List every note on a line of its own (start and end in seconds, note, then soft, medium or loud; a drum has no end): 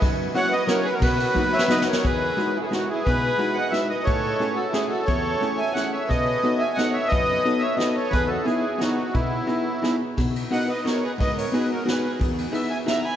0.01 0.27 F#2 medium
0.01 kick medium
0.01 ride soft
0.34 0.52 F#3 medium
0.34 0.52 A#3 medium
0.34 0.52 C#4 medium
0.34 0.53 E4 medium
0.34 0.53 F#4 medium
0.34 0.51 C#5 medium
0.34 0.54 F#5 loud
0.34 ride soft
0.51 0.67 B4 medium
0.51 0.69 D#5 loud
0.67 0.85 F#3 medium
0.67 0.86 A#3 medium
0.67 0.86 C#4 medium
0.67 0.86 E4 soft
0.67 0.85 F#4 medium
0.67 0.83 A#4 medium
0.67 0.86 C#5 medium
0.67 snare medium
0.67 ride soft
0.83 0.92 G#4 medium
0.83 0.94 B4 medium
0.93 1.00 F#4 medium
0.93 1.02 A#4 medium
1.00 1.26 B2 medium
1.00 1.49 F#4 medium
1.00 1.84 B4 medium
1.00 kick medium
1.00 ride medium
1.20 ride soft
1.35 1.53 F#3 medium
1.35 1.53 A#3 medium
1.35 1.53 B3 medium
1.35 1.53 D#4 medium
1.35 1.53 F#4 medium
1.35 kick soft
1.53 1.69 C#5 medium
1.53 1.71 E5 loud
1.59 snare medium
1.68 1.87 F#3 medium
1.68 1.88 A#3 medium
1.68 1.88 B3 medium
1.68 1.87 D#4 medium
1.68 1.88 F#4 medium
1.68 1.87 B4 medium
1.68 1.87 D#5 loud
1.68 snare medium
1.82 snare medium
1.89 2.04 A#4 medium
1.89 2.06 C#5 medium
1.93 snare medium
2.03 2.30 E2 medium
2.03 2.53 G#4 medium
2.03 2.58 B4 medium
2.03 kick medium
2.03 closed hi-hat medium
2.37 2.56 G#3 medium
2.37 2.56 D#4 medium
2.37 2.56 E4 soft
2.37 2.56 F#4 medium
2.37 closed hi-hat soft
2.56 2.60 E4 medium
2.56 2.60 G#4 medium
2.61 2.72 E4 medium
2.61 2.64 F#4 medium
2.61 2.73 G#4 medium
2.61 2.65 A4 medium
2.71 2.89 G#3 medium
2.71 2.89 D#4 soft
2.71 2.89 D#4 medium
2.71 2.89 E4 soft
2.71 2.90 F#4 medium
2.71 2.89 F#4 medium
2.71 snare soft
2.71 closed hi-hat soft
2.90 3.05 E4 medium
2.90 3.06 G#4 medium
3.05 3.31 B2 medium
3.05 3.53 G#4 medium
3.05 3.58 B4 loud
3.05 kick medium
3.05 closed hi-hat soft
3.38 3.56 G#3 medium
3.38 3.57 D#4 medium
3.38 3.57 E4 soft
3.38 3.56 F#4 medium
3.38 closed hi-hat soft
3.54 3.72 D#5 medium
3.54 3.72 F#5 medium
3.70 3.90 G#3 medium
3.70 3.90 D#4 soft
3.70 3.90 E4 soft
3.70 3.90 F#4 medium
3.70 3.89 B4 medium
3.70 3.88 E5 loud
3.70 snare soft
3.70 closed hi-hat soft
3.89 4.05 B4 medium
3.89 4.07 D#5 medium
4.04 4.32 A2 medium
4.04 4.53 A4 medium
4.04 4.58 C#5 loud
4.04 kick medium
4.04 closed hi-hat soft
4.40 4.58 A3 medium
4.40 4.57 C#4 medium
4.40 4.58 E4 soft
4.40 4.58 G#4 medium
4.40 closed hi-hat soft
4.56 4.71 F#4 medium
4.56 4.74 A4 medium
4.71 4.91 A3 medium
4.71 4.91 C#4 medium
4.71 4.89 E4 medium
4.71 4.92 E4 soft
4.71 4.91 G#4 medium
4.71 4.92 G#4 medium
4.71 snare soft
4.71 closed hi-hat soft
4.89 5.06 F#4 medium
4.89 5.07 A4 medium
5.05 5.33 E2 medium
5.05 5.55 A4 medium
5.05 5.60 C#5 loud
5.05 kick medium
5.05 closed hi-hat soft
5.41 5.60 A3 medium
5.41 5.60 C#4 medium
5.41 5.60 E4 medium
5.41 5.60 G#4 medium
5.41 closed hi-hat soft
5.57 5.74 E5 medium
5.57 5.74 G#5 loud
5.73 5.94 A3 soft
5.73 5.93 C#4 medium
5.73 5.94 E4 soft
5.73 5.94 G#4 soft
5.73 5.92 C#5 medium
5.73 5.91 F#5 loud
5.73 snare soft
5.73 closed hi-hat soft
5.92 6.08 C#5 medium
5.92 6.10 E5 medium
6.08 6.35 B2 medium
6.08 6.57 B4 medium
6.08 6.63 D#5 loud
6.08 kick medium
6.08 closed hi-hat soft
6.43 6.62 B3 medium
6.43 6.62 D#4 medium
6.43 6.62 F#4 medium
6.43 6.62 A4 medium
6.43 closed hi-hat soft
6.59 6.75 E5 medium
6.59 6.78 G#5 medium
6.76 6.96 B3 medium
6.76 6.96 D#4 soft
6.76 6.96 F#4 soft
6.76 6.96 A4 medium
6.76 6.92 D#5 medium
6.76 6.95 F#5 loud
6.76 snare medium
6.76 closed hi-hat soft
6.93 7.09 C#5 medium
6.93 7.11 E5 medium
7.08 7.37 F#2 medium
7.08 7.59 B4 medium
7.08 7.63 D#5 loud
7.12 kick medium
7.12 closed hi-hat soft
7.45 7.63 B3 medium
7.45 7.63 D#4 medium
7.45 7.63 F#4 medium
7.45 7.63 A4 medium
7.45 closed hi-hat soft
7.59 7.77 C#5 medium
7.59 7.78 E5 loud
7.76 7.95 B3 medium
7.76 7.96 D#4 medium
7.76 7.96 F#4 soft
7.76 7.96 A4 medium
7.76 7.95 B4 medium
7.76 7.96 D#5 medium
7.76 snare medium
7.76 closed hi-hat soft
7.95 8.12 A4 medium
7.95 8.13 C#5 medium
8.10 8.37 E2 medium
8.10 8.29 G#4 medium
8.10 8.29 B4 loud
8.10 kick medium
8.10 closed hi-hat medium
8.27 8.44 F#4 medium
8.27 8.45 A4 medium
8.44 8.63 B3 medium
8.44 8.64 D#4 medium
8.44 8.77 E4 medium
8.44 8.64 E4 medium
8.44 8.80 G#4 medium
8.44 8.64 G#4 medium
8.44 closed hi-hat soft
8.78 8.97 B3 medium
8.78 8.97 D#4 soft
8.78 9.12 D#4 medium
8.78 8.97 E4 soft
8.78 9.14 F#4 medium
8.78 8.97 G#4 medium
8.78 snare medium
8.78 closed hi-hat soft
9.13 9.40 B2 medium
9.13 9.97 B3 medium
9.13 9.96 E4 medium
9.13 kick medium
9.13 closed hi-hat soft
9.47 9.65 B3 medium
9.47 9.66 D#4 medium
9.47 9.65 E4 medium
9.47 9.66 G#4 medium
9.47 closed hi-hat soft
9.82 10.01 B3 medium
9.82 10.01 D#4 medium
9.82 10.01 E4 soft
9.82 10.01 G#4 medium
9.82 snare soft
9.82 closed hi-hat soft
10.17 10.43 B2 medium
10.17 kick medium
10.17 ride soft
10.36 ride soft
10.51 10.69 B3 medium
10.51 10.69 D#4 medium
10.51 10.69 F#4 medium
10.51 10.69 A#4 soft
10.51 10.68 D#5 medium
10.51 10.70 F#5 loud
10.51 ride soft
10.68 10.84 B4 medium
10.68 10.86 D#5 medium
10.85 11.03 B3 soft
10.85 11.03 D#4 medium
10.85 11.03 F#4 soft
10.85 11.02 A#4 medium
10.85 11.03 A#4 medium
10.85 11.04 C#5 medium
10.85 snare soft
10.85 ride soft
11.04 11.12 G#4 medium
11.04 11.11 B4 medium
11.18 11.44 G#2 medium
11.18 11.36 B4 medium
11.18 11.38 D#5 loud
11.18 kick medium
11.18 ride soft
11.37 11.52 A#4 medium
11.37 11.54 C#5 medium
11.37 ride soft
11.52 11.70 B3 medium
11.52 11.70 D#4 medium
11.52 11.71 F#4 medium
11.52 11.71 G#4 medium
11.52 11.70 G#4 medium
11.52 11.71 B4 medium
11.52 ride soft
11.71 11.86 F#4 medium
11.71 11.88 A#4 medium
11.85 12.04 B3 medium
11.85 12.03 D#4 soft
11.85 12.04 F#4 medium
11.85 12.04 G#4 soft
11.85 12.11 G#4 medium
11.85 12.11 B4 medium
11.85 snare medium
11.85 ride soft
12.19 12.45 E2 medium
12.19 kick medium
12.19 ride soft
12.38 ride soft
12.52 12.71 B3 medium
12.52 12.71 D#4 medium
12.52 12.71 E4 medium
12.52 12.71 G#4 medium
12.52 12.71 B4 medium
12.52 12.71 E5 medium
12.52 ride soft
12.70 12.79 E5 medium
12.70 12.78 G#5 loud
12.86 13.05 B3 soft
12.86 13.05 D#4 medium
12.86 13.05 E4 soft
12.86 13.05 G#4 medium
12.86 13.04 E5 medium
12.86 13.06 A#5 medium
12.86 snare medium
12.86 ride soft
13.05 13.16 G#5 medium
13.05 13.16 B5 medium